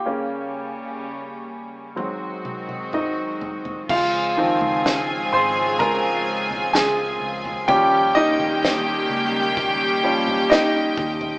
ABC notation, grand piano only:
X:1
M:4/4
L:1/8
Q:1/4=63
K:Dblyd
V:1 name="Grand piano"
[Gg]3 z3 [Ee]2 | [Ff]3 [cc'] [Bb]2 [Aa]2 | [Gg] [Ee]4- [Ee] [Ee]2 |]
V:2 name="Grand piano" clef=bass
[D,B,D]3 z [A,,_G,C]4 | z [E,F,C]6- [E,F,C] | [F,G,D]4- [F,G,D] [F,G,D] z2 |]